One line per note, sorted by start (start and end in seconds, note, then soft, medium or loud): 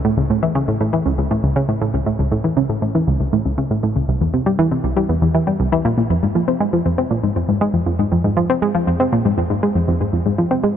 0.05 0.16 A2 medium
0.17 0.28 C#2 medium
0.30 0.34 A2 medium
0.43 0.47 E3 medium
0.55 0.63 C#3 medium
0.68 0.75 A2 medium
0.81 0.91 A2 medium
0.93 1.00 E3 medium
1.06 1.17 C#2 medium
1.18 1.26 C#2 medium
1.31 1.35 A2 medium
1.44 1.54 C#2 medium
1.56 1.63 C#3 medium
1.69 1.80 A2 medium
1.81 1.92 A2 medium
1.94 1.98 C#2 medium
2.06 2.17 A2 medium
2.19 2.30 C#2 medium
2.32 2.36 A2 medium
2.44 2.49 E3 medium
2.57 2.64 C#3 medium
2.69 2.77 A2 medium
2.82 2.93 A2 medium
2.95 3.02 E3 medium
3.08 3.18 C#2 medium
3.20 3.27 C#2 medium
3.33 3.37 A2 medium
3.46 3.56 C#2 medium
3.58 3.65 C#3 medium
3.71 3.81 A2 medium
3.83 3.94 A2 medium
3.96 4.00 C#2 medium
4.08 4.19 C2 medium
4.21 4.32 E2 medium
4.34 4.38 C3 medium
4.46 4.51 G3 medium
4.59 4.66 E3 medium
4.71 4.79 C3 medium
4.84 4.95 C2 medium
4.97 5.04 G3 medium
5.09 5.20 E2 medium
5.22 5.29 E2 medium
5.35 5.39 E3 medium
5.47 5.51 G3 medium
5.60 5.67 C2 medium
5.72 5.79 E3 loud
5.85 5.89 A#2 loud
5.98 6.02 A#2 medium
6.10 6.21 F2 medium
6.23 6.33 G#2 medium
6.35 6.40 F3 medium
6.48 6.52 C4 medium
6.60 6.68 G#3 medium
6.73 6.80 F3 medium
6.86 6.96 F2 medium
6.98 7.05 C4 medium
7.11 7.22 A#2 medium
7.23 7.31 G#2 medium
7.36 7.40 F2 medium
7.49 7.59 G#2 medium
7.61 7.68 G#3 medium
7.74 7.85 F2 medium
7.86 7.97 F2 medium
7.99 8.03 G#2 medium
8.12 8.22 F2 medium
8.24 8.35 G#2 medium
8.37 8.41 F3 medium
8.50 8.54 C4 medium
8.62 8.69 G#3 medium
8.75 8.82 F3 medium
8.87 8.98 F2 medium
9.00 9.07 C4 medium
9.13 9.23 A#2 medium
9.25 9.32 G#2 medium
9.38 9.42 F2 medium
9.50 9.61 G#2 medium
9.63 9.70 G#3 medium
9.75 9.86 F2 medium
9.88 9.99 F2 medium
10.01 10.05 G#2 medium
10.13 10.24 F2 medium
10.26 10.37 G#2 medium
10.38 10.43 F3 medium
10.51 10.55 C4 medium
10.64 10.71 G#3 medium